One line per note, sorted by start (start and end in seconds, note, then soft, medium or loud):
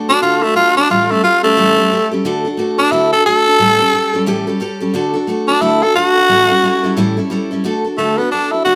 0.09 0.22 D4 loud
0.09 0.22 D4 medium
0.09 0.22 F#4 medium
0.09 0.22 A4 medium
0.22 0.43 D3 medium
0.22 0.43 A3 medium
0.22 0.43 D4 loud
0.22 0.45 F4 loud
0.22 0.42 F#4 loud
0.22 0.40 A4 loud
0.42 0.56 A3 loud
0.42 0.54 D4 soft
0.42 0.55 F#4 soft
0.42 0.55 A4 medium
0.55 0.76 A3 medium
0.55 0.76 D4 medium
0.55 0.76 F4 loud
0.55 0.76 F#4 medium
0.55 0.74 A4 medium
0.76 0.90 D4 loud
0.76 0.90 D4 soft
0.76 0.90 F#4 soft
0.76 0.89 A4 medium
0.89 1.10 A2 medium
0.89 1.10 E3 medium
0.89 1.10 G3 medium
0.89 1.10 C#4 medium
0.89 1.13 F4 medium
0.89 1.09 G4 medium
0.89 1.08 A4 medium
1.09 1.21 G3 soft
1.09 1.23 A3 medium
1.09 1.22 C#4 soft
1.09 1.23 G4 soft
1.09 1.23 A4 medium
1.22 1.43 G3 medium
1.22 1.44 C#4 medium
1.22 1.43 F4 medium
1.22 1.43 G4 medium
1.22 1.42 A4 medium
1.43 1.56 G3 medium
1.43 2.09 A3 loud
1.43 1.57 C#4 soft
1.43 1.57 G4 medium
1.43 1.57 A4 medium
1.57 1.77 A2 medium
1.57 1.78 E3 medium
1.57 1.78 G3 medium
1.57 1.78 C#4 medium
1.57 1.77 G4 medium
1.57 1.76 A4 medium
1.77 1.90 G3 soft
1.77 1.91 C#4 soft
1.77 1.91 G4 soft
1.77 1.91 A4 medium
1.91 2.11 G3 medium
1.91 2.12 C#4 medium
1.91 2.11 G4 medium
1.91 2.10 A4 medium
2.12 2.25 G3 medium
2.12 2.25 C#4 soft
2.12 2.25 G4 medium
2.12 2.25 A4 medium
2.25 2.45 D3 medium
2.25 2.45 A3 medium
2.25 2.46 D4 medium
2.25 2.45 F#4 loud
2.25 2.44 A4 loud
2.45 2.57 D4 medium
2.45 2.58 F#4 medium
2.45 2.58 A4 medium
2.57 2.78 A3 medium
2.57 2.79 D4 medium
2.57 2.79 F#4 medium
2.57 2.77 A4 medium
2.78 2.94 D4 loud
2.78 2.91 D4 medium
2.78 2.92 F#4 medium
2.78 2.92 A4 medium
2.92 3.12 D3 medium
2.92 3.12 A3 medium
2.92 3.13 D4 medium
2.92 3.12 E4 medium
2.92 3.13 F#4 medium
2.92 3.11 A4 medium
3.12 3.25 D4 soft
3.12 3.26 F#4 soft
3.12 3.26 A4 soft
3.12 3.25 A4 loud
3.26 3.46 A3 medium
3.26 3.47 D4 medium
3.26 3.46 F#4 medium
3.26 4.24 A4 loud
3.26 3.45 A4 medium
3.46 3.60 D4 soft
3.46 3.60 F#4 medium
3.46 3.59 A4 medium
3.59 3.80 A2 medium
3.59 3.80 E3 medium
3.59 3.80 G3 medium
3.59 3.80 C#4 medium
3.59 3.79 G4 medium
3.59 3.78 A4 medium
3.80 3.92 G3 medium
3.80 3.92 C#4 medium
3.80 3.93 G4 medium
3.80 3.93 A4 medium
3.93 4.13 G3 medium
3.93 4.14 C#4 medium
3.93 4.14 G4 medium
3.93 4.12 A4 medium
4.14 4.26 G3 medium
4.14 4.27 C#4 medium
4.14 4.27 G4 medium
4.14 4.27 A4 medium
4.26 4.47 A2 medium
4.26 4.47 E3 loud
4.26 4.47 G3 loud
4.26 4.48 C#4 medium
4.26 4.47 G4 loud
4.26 4.46 A4 loud
4.47 4.59 G3 soft
4.47 4.60 C#4 medium
4.47 4.60 G4 medium
4.47 4.60 A4 medium
4.60 4.81 G3 medium
4.60 4.81 C#4 medium
4.60 4.80 G4 medium
4.60 4.79 A4 medium
4.80 4.94 G3 soft
4.80 4.94 C#4 soft
4.80 4.94 G4 medium
4.80 4.94 A4 medium
4.94 5.14 D3 medium
4.94 5.15 A3 medium
4.94 5.15 D4 loud
4.94 5.14 F#4 medium
4.94 5.12 A4 loud
5.14 5.27 D4 medium
5.14 5.28 F#4 medium
5.14 5.27 A4 medium
5.27 5.48 A3 medium
5.27 5.49 D4 medium
5.27 5.48 F#4 medium
5.27 5.47 A4 medium
5.48 5.63 D4 loud
5.48 5.61 D4 medium
5.48 5.61 F#4 medium
5.48 5.61 A4 medium
5.61 5.82 D3 medium
5.61 5.82 A3 medium
5.61 5.82 D4 medium
5.61 5.84 E4 medium
5.61 5.82 F#4 medium
5.61 5.81 A4 medium
5.82 5.95 D4 soft
5.82 5.95 F#4 soft
5.82 5.95 A4 medium
5.95 6.15 A3 medium
5.95 6.16 D4 medium
5.95 6.94 F#4 loud
5.95 6.15 F#4 medium
5.95 6.14 A4 medium
6.15 6.29 D4 soft
6.15 6.29 A4 medium
6.29 6.49 A2 medium
6.29 6.49 E3 medium
6.29 6.50 G3 medium
6.29 6.49 C#4 medium
6.29 6.48 E4 medium
6.29 6.47 A4 medium
6.48 6.61 G3 medium
6.48 6.62 C#4 medium
6.48 6.63 E4 medium
6.48 6.62 A4 medium
6.62 6.83 G3 medium
6.62 6.84 C#4 medium
6.62 6.83 E4 medium
6.62 6.82 A4 medium
6.83 6.96 G3 medium
6.83 6.96 C#4 medium
6.83 6.97 E4 medium
6.83 6.97 A4 medium
6.97 7.17 A2 medium
6.97 7.17 E3 loud
6.97 7.17 G3 medium
6.97 7.18 C#4 medium
6.97 7.17 E4 loud
6.97 7.16 A4 loud
7.17 7.29 G3 medium
7.17 7.30 C#4 soft
7.17 7.31 E4 medium
7.17 7.30 A4 medium
7.30 7.51 G3 medium
7.30 7.51 C#4 medium
7.30 7.51 E4 medium
7.30 7.50 A4 medium
7.51 7.64 G3 medium
7.51 7.65 C#4 medium
7.51 7.64 E4 medium
7.51 7.64 A4 medium
7.64 7.84 D3 medium
7.64 7.85 A3 medium
7.64 7.85 D4 medium
7.64 7.85 F#4 medium
7.64 7.83 A4 medium
7.84 7.98 D4 soft
7.84 7.98 F#4 soft
7.84 7.98 A4 medium
7.98 8.18 D3 medium
7.98 8.19 A3 medium
7.98 8.19 D4 medium
7.98 8.18 F#4 medium
7.98 8.17 A4 medium
8.18 8.31 B3 medium
8.18 8.31 D4 soft
8.18 8.32 F#4 soft
8.18 8.31 A4 medium
8.31 8.52 A3 medium
8.31 8.53 D4 medium
8.31 8.52 D4 medium
8.31 8.52 F#4 medium
8.31 8.50 A4 medium
8.52 8.65 D4 soft
8.52 8.64 E4 medium
8.52 8.65 F#4 soft
8.52 8.65 A4 soft
8.65 8.75 D3 medium
8.65 8.75 A3 medium
8.65 8.75 D4 medium
8.65 8.75 F#4 medium
8.65 8.75 A4 medium